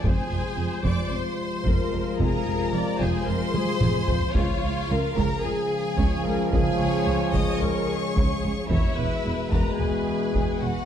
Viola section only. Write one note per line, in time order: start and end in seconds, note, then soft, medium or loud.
0.05 1.67 C5 medium
1.66 2.20 A#4 medium
2.20 2.74 G#4 medium
2.73 3.00 D5 medium
3.00 3.27 C5 medium
3.27 3.54 A#4 medium
3.55 3.81 G#4 medium
3.82 4.08 G#4 medium
4.08 4.35 C5 medium
4.35 4.90 C#5 medium
4.90 5.44 A#4 medium
5.44 5.99 G#4 medium
5.99 6.26 C#5 medium
6.26 6.52 A#4 medium
6.53 6.80 G#4 medium
6.79 7.61 C#5 medium
7.61 7.89 A#4 medium
7.89 8.70 G#4 medium
8.70 8.97 C#5 medium
8.98 10.85 B4 medium